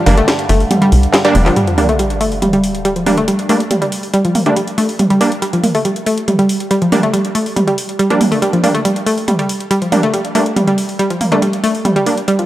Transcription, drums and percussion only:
0.06 mid tom medium
0.06 open hi-hat loud
0.17 closed hi-hat medium
0.28 snare loud
0.28 closed hi-hat medium
0.39 closed hi-hat medium
0.49 snare soft
0.49 open hi-hat loud
0.60 open hi-hat medium
0.71 closed hi-hat loud
0.71 mid tom loud
0.82 closed hi-hat medium
0.92 open hi-hat loud
1.03 closed hi-hat medium
1.14 snare loud
1.14 clap loud
1.14 closed hi-hat medium
1.25 closed hi-hat medium
1.35 mid tom loud
1.35 open hi-hat loud
1.46 clap medium
1.46 open hi-hat medium
1.56 closed hi-hat medium
1.67 closed hi-hat soft
1.78 mid tom medium
1.78 open hi-hat loud
1.89 closed hi-hat medium
1.99 closed hi-hat loud
2.10 closed hi-hat medium
2.21 open hi-hat loud
2.32 open hi-hat medium
2.42 closed hi-hat loud
2.42 mid tom medium
2.53 closed hi-hat medium
2.64 open hi-hat loud
2.75 closed hi-hat medium
2.85 closed hi-hat medium
2.96 closed hi-hat medium
3.06 mid tom medium
3.06 open hi-hat loud
3.17 closed hi-hat medium
3.28 closed hi-hat medium
3.39 closed hi-hat medium
3.49 open hi-hat loud
3.60 closed hi-hat medium
3.71 closed hi-hat medium
3.71 mid tom medium
3.82 closed hi-hat medium
3.92 open hi-hat loud
4.03 open hi-hat medium
4.14 closed hi-hat medium
4.25 closed hi-hat medium
4.35 mid tom medium
4.35 open hi-hat loud
4.46 closed hi-hat medium
4.56 closed hi-hat medium
4.68 closed hi-hat medium
4.78 open hi-hat loud
4.89 open hi-hat medium
4.99 closed hi-hat medium
4.99 mid tom medium
5.10 closed hi-hat medium
5.21 open hi-hat loud
5.32 closed hi-hat medium
5.42 closed hi-hat medium
5.53 closed hi-hat medium
5.64 mid tom medium
5.64 open hi-hat loud
5.75 open hi-hat medium
5.85 closed hi-hat medium
5.96 closed hi-hat medium
6.06 open hi-hat loud
6.18 closed hi-hat medium
6.28 closed hi-hat medium
6.28 mid tom medium
6.39 closed hi-hat medium
6.49 open hi-hat loud
6.60 closed hi-hat medium
6.71 closed hi-hat medium
6.82 closed hi-hat soft
6.92 mid tom medium
6.92 open hi-hat loud
7.03 closed hi-hat soft
7.14 closed hi-hat medium
7.25 closed hi-hat medium
7.35 open hi-hat loud
7.46 open hi-hat medium
7.56 closed hi-hat medium
7.56 mid tom medium
7.68 closed hi-hat soft
7.78 open hi-hat loud
7.89 closed hi-hat soft
7.99 closed hi-hat medium
8.10 closed hi-hat soft
8.21 mid tom medium
8.21 open hi-hat loud
8.32 open hi-hat medium
8.42 closed hi-hat medium
8.53 closed hi-hat soft
8.64 mid tom medium
8.64 open hi-hat loud
8.75 closed hi-hat soft
8.85 closed hi-hat medium
8.96 closed hi-hat soft
9.06 open hi-hat loud
9.18 open hi-hat medium
9.28 closed hi-hat medium
9.28 mid tom medium
9.39 closed hi-hat soft
9.49 open hi-hat loud
9.60 closed hi-hat soft
9.71 closed hi-hat medium
9.82 closed hi-hat soft
9.92 mid tom medium
9.92 open hi-hat loud
10.03 closed hi-hat soft
10.14 closed hi-hat medium
10.25 closed hi-hat soft
10.35 open hi-hat loud
10.46 closed hi-hat soft
10.56 closed hi-hat medium
10.56 mid tom medium
10.68 closed hi-hat soft
10.78 open hi-hat loud
10.89 open hi-hat medium
10.99 closed hi-hat medium
11.10 closed hi-hat soft
11.21 mid tom medium
11.21 open hi-hat loud
11.32 closed hi-hat soft
11.42 closed hi-hat medium
11.53 closed hi-hat soft
11.64 open hi-hat loud
11.75 open hi-hat medium
11.85 closed hi-hat medium
11.85 mid tom loud
11.96 closed hi-hat soft
12.06 open hi-hat loud
12.18 closed hi-hat medium
12.28 closed hi-hat medium
12.39 closed hi-hat medium

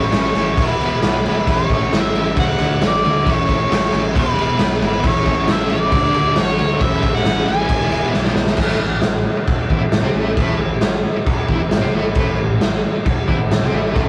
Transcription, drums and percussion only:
0.01 snare soft
0.12 snare loud
0.12 crash medium
0.35 crash medium
0.57 kick loud
0.57 crash medium
0.81 crash medium
1.02 snare loud
1.02 crash medium
1.26 crash medium
1.47 kick loud
1.47 crash medium
1.70 kick medium
1.70 crash medium
1.93 snare loud
1.93 crash medium
2.15 crash medium
2.37 kick loud
2.37 crash medium
2.58 crash medium
2.81 snare loud
2.81 crash medium
3.05 crash medium
3.26 kick loud
3.26 crash medium
3.49 kick medium
3.49 crash medium
3.72 snare loud
3.72 crash medium
3.94 crash medium
4.16 kick loud
4.16 crash medium
4.38 crash medium
4.59 snare loud
4.59 crash medium
4.82 crash medium
5.04 kick loud
5.04 crash medium
5.26 kick medium
5.26 snare soft
5.26 crash medium
5.48 snare loud
5.48 crash medium
5.70 crash medium
5.92 kick loud
5.92 crash medium
6.14 crash medium
6.36 snare loud
6.36 crash medium
6.59 crash medium
6.81 kick loud
6.81 crash medium
7.03 kick medium
7.03 crash medium
7.15 snare soft
7.25 snare loud
7.25 crash medium
7.48 crash medium
7.69 kick loud
7.69 crash medium
7.91 crash medium
8.14 snare medium
8.25 snare medium
8.36 snare loud
8.47 snare medium
8.57 kick loud
8.57 crash loud
8.57 crash medium
9.01 snare loud
9.01 crash medium
9.47 kick loud
9.47 crash medium
9.70 kick medium
9.92 snare loud
9.92 crash medium
10.37 kick loud
10.37 crash medium
10.81 snare loud
10.81 crash medium
11.26 kick loud
11.26 crash medium
11.49 kick medium
11.71 snare loud
11.71 crash medium
12.15 kick loud
12.15 crash medium
12.61 snare loud
12.61 crash medium
13.06 kick loud
13.06 crash medium
13.29 kick medium
13.51 snare loud
13.51 crash medium
13.96 kick loud
13.96 crash medium

